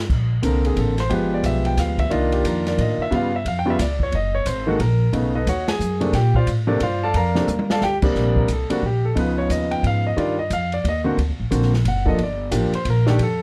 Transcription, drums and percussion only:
0.10 kick, crash
0.43 kick, hi-hat pedal, ride
0.65 ride
0.77 kick, ride
0.98 snare, ride
1.10 kick, ride
1.43 kick, hi-hat pedal, ride
1.65 ride
1.77 kick, snare, hi-hat pedal, ride
1.98 kick, ride
2.11 kick, ride
2.32 ride
2.44 kick, hi-hat pedal, ride
2.66 snare, ride
2.78 kick, ride
3.11 kick, ride
3.45 kick, ride
3.79 kick, snare, hi-hat pedal, ride
4.00 kick
4.12 kick, ride
4.46 kick, hi-hat pedal, ride
4.79 kick, ride
5.13 kick, ride
5.46 kick, hi-hat pedal, ride
5.68 snare, ride
5.80 hi-hat pedal
6.01 ride
6.13 kick, snare, ride
6.34 kick
6.47 kick, hi-hat pedal, ride
6.80 kick, ride
7.14 kick, ride
7.35 snare
7.48 hi-hat pedal, high tom
7.59 high tom
7.70 snare
7.81 snare
8.02 kick, crash
8.15 kick, snare
8.36 kick
8.48 kick, hi-hat pedal, ride
8.70 ride
8.82 kick
9.16 kick, ride
9.49 kick, hi-hat pedal, ride
9.71 ride
9.83 kick, ride
10.17 kick, ride
10.50 kick, hi-hat pedal, ride
10.72 ride
10.84 kick, ride
11.18 kick, ride
11.51 kick, hi-hat pedal, ride
11.62 snare
11.74 snare
11.85 kick, ride
12.06 kick
12.18 kick, ride
12.52 kick, hi-hat pedal, ride
12.73 ride
12.85 kick, ride
13.07 snare
13.19 kick, ride

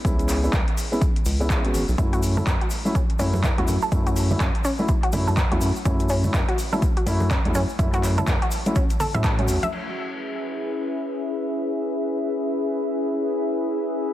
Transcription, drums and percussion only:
0.05 kick, closed hi-hat, shaker
0.19 closed hi-hat, shaker
0.29 clap, open hi-hat, shaker
0.44 shaker
0.53 kick, clap, closed hi-hat, shaker
0.68 closed hi-hat
0.77 open hi-hat, shaker
0.93 shaker
1.01 kick, closed hi-hat, shaker
1.16 closed hi-hat
1.25 open hi-hat, shaker
1.41 shaker
1.50 kick, clap, closed hi-hat, shaker
1.65 closed hi-hat
1.74 open hi-hat, shaker
1.89 shaker
1.98 kick, closed hi-hat, shaker
2.13 closed hi-hat, shaker
2.23 open hi-hat, shaker
2.37 low conga, shaker
2.47 kick, clap, closed hi-hat, shaker
2.61 closed hi-hat
2.70 open hi-hat, shaker
2.86 shaker
2.95 kick, closed hi-hat, shaker
3.10 closed hi-hat
3.19 open hi-hat, shaker
3.34 high conga, shaker
3.43 kick, clap, closed hi-hat, shaker
3.58 closed hi-hat
3.68 open hi-hat, high conga, shaker
3.82 shaker
3.92 kick, closed hi-hat, shaker
4.07 closed hi-hat, shaker
4.16 open hi-hat, shaker
4.30 low conga, shaker
4.40 kick, clap, closed hi-hat, shaker
4.55 closed hi-hat
4.64 open hi-hat, shaker
4.78 shaker
4.88 kick, closed hi-hat, shaker
5.03 closed hi-hat
5.12 open hi-hat, low conga, shaker
5.27 high conga, shaker
5.37 kick, clap, closed hi-hat, shaker
5.52 closed hi-hat
5.61 open hi-hat, shaker
5.76 shaker
5.85 kick, closed hi-hat, shaker
6.00 closed hi-hat, shaker
6.09 open hi-hat, shaker
6.24 low conga, shaker
6.34 kick, clap, closed hi-hat, shaker
6.49 closed hi-hat
6.58 open hi-hat, shaker
6.72 shaker
6.82 kick, closed hi-hat, shaker
6.97 closed hi-hat
7.07 open hi-hat, shaker
7.20 high conga, shaker
7.31 kick, clap, closed hi-hat, shaker
7.45 closed hi-hat
7.54 open hi-hat, high conga, shaker
7.69 shaker
7.79 kick, closed hi-hat, shaker
7.93 closed hi-hat, shaker
8.03 clap, open hi-hat, shaker
8.18 closed hi-hat, low conga, shaker
8.27 kick, clap, closed hi-hat, shaker
8.42 closed hi-hat
8.51 open hi-hat, shaker
8.66 closed hi-hat, shaker
8.76 kick, closed hi-hat, shaker
8.90 closed hi-hat, shaker
9.00 open hi-hat, low conga, shaker
9.14 closed hi-hat, high conga, shaker
9.24 kick, clap, closed hi-hat, shaker
9.39 closed hi-hat
9.48 open hi-hat, shaker
9.63 closed hi-hat, high conga, shaker
9.73 crash

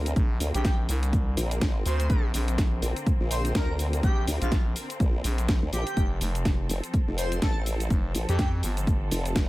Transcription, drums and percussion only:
0.06 closed hi-hat, cabasa
0.16 kick, closed hi-hat, cabasa
0.40 open hi-hat, cabasa
0.54 closed hi-hat, cabasa
0.65 kick, snare, closed hi-hat, cabasa
0.89 open hi-hat, cabasa
1.03 closed hi-hat, cabasa
1.13 kick, closed hi-hat, cabasa
1.37 open hi-hat, cabasa
1.51 closed hi-hat, cabasa
1.61 kick, snare, closed hi-hat, cabasa
1.86 open hi-hat, cabasa
2.00 closed hi-hat, cabasa
2.10 kick, closed hi-hat, cabasa
2.34 open hi-hat, cabasa
2.48 closed hi-hat, cabasa
2.58 kick, snare, closed hi-hat, cabasa
2.82 open hi-hat, cabasa
2.96 closed hi-hat, cabasa
3.07 kick, closed hi-hat, cabasa
3.31 open hi-hat, cabasa
3.45 closed hi-hat, cabasa
3.55 kick, snare, closed hi-hat, cabasa
3.79 open hi-hat, cabasa
3.93 closed hi-hat, cabasa
4.03 kick, closed hi-hat, cabasa
4.27 open hi-hat, cabasa
4.42 closed hi-hat, cabasa
4.52 kick, snare, closed hi-hat, cabasa
4.76 open hi-hat, cabasa
4.90 closed hi-hat, cabasa
5.00 kick, closed hi-hat, cabasa
5.24 open hi-hat, cabasa
5.38 closed hi-hat, cabasa
5.48 kick, snare, closed hi-hat, cabasa
5.73 open hi-hat, cabasa
5.87 closed hi-hat, cabasa
5.97 kick, closed hi-hat, cabasa
6.21 open hi-hat, cabasa
6.35 closed hi-hat, cabasa
6.45 kick, snare, closed hi-hat, cabasa
6.69 open hi-hat, cabasa
6.84 closed hi-hat, cabasa
6.94 kick, closed hi-hat, cabasa
7.18 open hi-hat, cabasa
7.32 closed hi-hat, cabasa
7.42 kick, snare, closed hi-hat, cabasa
7.66 open hi-hat, cabasa
7.80 closed hi-hat, cabasa
7.90 kick, closed hi-hat, cabasa
8.15 open hi-hat, cabasa
8.29 closed hi-hat, cabasa
8.39 kick, snare, closed hi-hat, cabasa
8.63 open hi-hat, cabasa
8.77 closed hi-hat, cabasa
8.87 kick, closed hi-hat, cabasa
9.11 open hi-hat, cabasa
9.26 closed hi-hat, cabasa
9.36 kick, snare, closed hi-hat, cabasa

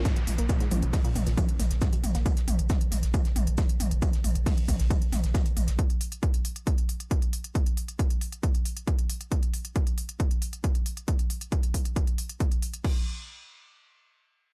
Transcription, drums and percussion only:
0.05 kick, snare, closed hi-hat, mid tom, shaker
0.16 closed hi-hat
0.27 mid tom, open hi-hat, shaker
0.38 closed hi-hat
0.49 kick, closed hi-hat, mid tom, shaker
0.60 snare, closed hi-hat
0.71 mid tom, open hi-hat, shaker
0.82 closed hi-hat
0.93 kick, snare, closed hi-hat, mid tom, open hi-hat
1.05 closed hi-hat
1.15 mid tom, open hi-hat, shaker
1.26 snare, closed hi-hat
1.37 kick, closed hi-hat, mid tom, shaker
1.49 closed hi-hat
1.60 snare, mid tom, open hi-hat, shaker
1.70 snare, closed hi-hat
1.81 kick, snare, closed hi-hat, mid tom, shaker
1.93 closed hi-hat
2.04 mid tom, open hi-hat, shaker
2.15 snare, closed hi-hat
2.26 kick, closed hi-hat, mid tom, shaker
2.36 snare, closed hi-hat
2.48 mid tom, open hi-hat, shaker
2.59 closed hi-hat
2.69 kick, snare, closed hi-hat, mid tom, shaker
2.81 closed hi-hat
2.91 snare, mid tom, open hi-hat, shaker
3.03 snare, closed hi-hat
3.14 kick, closed hi-hat, mid tom, shaker
3.25 snare, closed hi-hat
3.36 mid tom, open hi-hat, shaker
3.47 closed hi-hat
3.57 kick, snare, closed hi-hat, mid tom, shaker
3.69 closed hi-hat
3.80 mid tom, open hi-hat, shaker
3.91 closed hi-hat
4.02 kick, closed hi-hat, mid tom, shaker
4.13 snare, closed hi-hat
4.24 mid tom, open hi-hat, shaker
4.35 closed hi-hat
4.46 kick, snare, closed hi-hat, mid tom, open hi-hat
4.57 closed hi-hat
4.68 kick, mid tom, open hi-hat, shaker
4.80 snare, closed hi-hat
4.90 kick, closed hi-hat, mid tom, shaker
5.02 closed hi-hat
5.12 snare, mid tom, open hi-hat, shaker
5.24 snare, closed hi-hat
5.34 kick, snare, closed hi-hat, mid tom, shaker
5.45 closed hi-hat
5.57 mid tom, open hi-hat, shaker
5.67 snare, closed hi-hat
5.79 kick, closed hi-hat
5.90 closed hi-hat
6.01 open hi-hat
6.12 closed hi-hat
6.23 kick, closed hi-hat
6.34 closed hi-hat
6.45 open hi-hat
6.56 closed hi-hat
6.67 kick, closed hi-hat
6.78 closed hi-hat
6.89 open hi-hat
7.00 closed hi-hat
7.11 kick, closed hi-hat
7.22 closed hi-hat
7.33 open hi-hat
7.44 closed hi-hat
7.55 kick, closed hi-hat
7.66 closed hi-hat
7.77 open hi-hat
7.88 closed hi-hat
7.99 kick, closed hi-hat
8.10 closed hi-hat
8.21 open hi-hat
8.32 closed hi-hat
8.43 kick, closed hi-hat
8.55 closed hi-hat
8.65 open hi-hat
8.77 closed hi-hat
8.87 kick, closed hi-hat
8.99 closed hi-hat
9.10 open hi-hat
9.21 closed hi-hat
9.32 kick, closed hi-hat
9.43 closed hi-hat
9.54 open hi-hat
9.65 closed hi-hat
9.76 kick, closed hi-hat
9.87 closed hi-hat
9.98 open hi-hat
10.09 closed hi-hat
10.20 kick, closed hi-hat
10.31 closed hi-hat
10.42 open hi-hat
10.53 closed hi-hat
10.64 kick, closed hi-hat
10.75 closed hi-hat
10.86 open hi-hat
10.97 closed hi-hat
11.08 kick, closed hi-hat
11.19 closed hi-hat
11.30 open hi-hat
11.41 closed hi-hat
11.52 kick, closed hi-hat
11.63 closed hi-hat
11.74 kick, open hi-hat
11.85 closed hi-hat
11.96 kick, closed hi-hat
12.07 closed hi-hat
12.18 open hi-hat
12.29 closed hi-hat
12.40 kick, closed hi-hat
12.52 closed hi-hat
12.62 open hi-hat
12.74 closed hi-hat
12.84 kick, crash

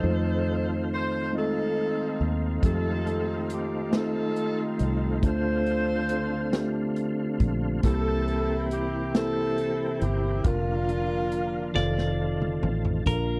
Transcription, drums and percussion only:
2.63 kick, closed hi-hat
3.07 closed hi-hat
3.50 closed hi-hat
3.93 snare, closed hi-hat
4.36 closed hi-hat
4.79 closed hi-hat
5.23 kick, closed hi-hat
5.66 closed hi-hat
6.09 closed hi-hat
6.53 snare, closed hi-hat
6.96 closed hi-hat
7.40 kick, closed hi-hat
7.83 kick, closed hi-hat
8.28 closed hi-hat
8.71 closed hi-hat
9.15 snare, closed hi-hat
9.58 closed hi-hat
10.01 closed hi-hat
10.44 kick, closed hi-hat
10.89 closed hi-hat
11.32 closed hi-hat
11.76 snare
11.98 snare
12.42 mid tom
12.63 mid tom
12.85 floor tom
13.06 kick, closed hi-hat

